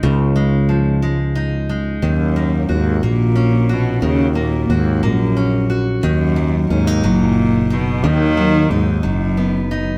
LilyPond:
<<
  \new Staff \with { instrumentName = "Steel-string acoustic guitar" } { \time 6/8 \key ees \minor \tempo 4. = 60 <des f aes ees'>8 aes8 f8 aes8 ees'8 aes8 | ees8 bes8 ges'8 bes8 des'8 ges'8 | ees8 bes8 ges'8 bes8 des'8 ges'8 | dis8 fis8 des'16 dis'16 fis4 dis'8 |
dis8 fis8 dis'8 fis8 b8 dis'8 | }
  \new Staff \with { instrumentName = "Cello" } { \clef bass \time 6/8 \key ees \minor r2. | ges,4 aes,8 bes,4 ces8 | des8 bes,8 aes,8 ges,4 r8 | fis,4 aes,8 bes,4 b,8 |
dis4 aes,8 fis,4 r8 | }
  \new Staff \with { instrumentName = "Fretless electric bass" } { \clef bass \time 6/8 \key ees \minor des,2. | ees,4 ees,8 bes,,4. | ees,4 ees,8 bes,,4. | dis,4 dis,8 fis,,4. |
dis,4 dis,8 fis,,4. | }
>>